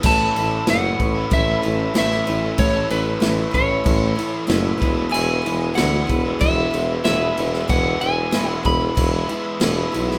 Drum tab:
CC |x-x-x-x-x-x-x-x-|x-x-x-x-x-x-x-x-|x-x-x-x-x-x-x-x-|x-x-x-x-x-x-x-x-|
SD |----o-------oo--|----o-------o---|----o-------o--o|----o-------o--o|
BD |o-----o-o-------|o-----o-o-----o-|------o-o-------|o-----o-o-------|